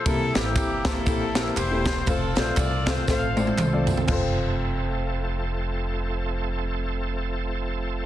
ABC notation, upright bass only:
X:1
M:4/4
L:1/8
Q:"Swing" 1/4=119
K:F
V:1 name="Upright bass" clef=bass
C,, A,,, G,,,2 B,,,2 E,,,2 | F,,, B,,, C,,2 A,,,2 C,,2 | F,,,8- | F,,,8 |]